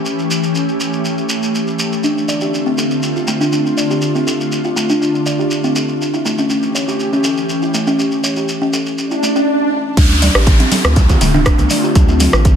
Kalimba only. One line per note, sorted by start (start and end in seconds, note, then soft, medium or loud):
2.04 2.16 D4 medium
2.28 2.40 D5 medium
2.41 2.52 G4 medium
2.66 2.77 C4 medium
2.78 2.90 A4 medium
3.16 3.22 F4 medium
3.28 3.39 A3 medium
3.41 3.51 D4 medium
3.52 3.65 D4 medium
3.77 3.89 D5 medium
3.90 4.01 G4 medium
4.15 4.26 C4 medium
4.27 4.39 A4 medium
4.65 4.71 F4 medium
4.76 4.88 A3 medium
4.90 5.00 D4 medium
5.01 5.14 D4 medium
5.26 5.38 D5 medium
5.39 5.50 G4 medium
5.64 5.75 C4 medium
5.76 5.88 A4 medium
6.14 6.20 E4 medium
6.25 6.37 A3 medium
6.38 6.49 C#4 medium
6.50 6.62 C#4 medium
6.75 6.87 C#5 medium
6.88 6.98 G4 medium
7.13 7.24 C#4 medium
7.24 7.36 A4 medium
7.62 7.69 E4 medium
7.74 7.86 A3 medium
7.87 7.98 C#4 loud
7.99 8.11 C#4 medium
8.24 8.35 C#5 medium
8.37 8.47 G4 medium
8.62 8.73 C#4 loud
8.73 8.85 A4 medium
9.11 9.17 E4 medium
9.23 9.35 A3 medium
9.36 9.46 C#4 loud
9.97 10.10 D4 medium
10.22 10.34 D5 medium
10.35 10.46 G4 medium
10.60 10.71 C4 loud
10.71 10.83 A4 medium
11.09 11.16 F4 medium
11.21 11.33 A3 loud
11.34 11.45 D4 loud
11.71 11.82 D5 medium
11.84 11.94 G4 medium
12.09 12.20 C4 loud
12.20 12.32 A4 medium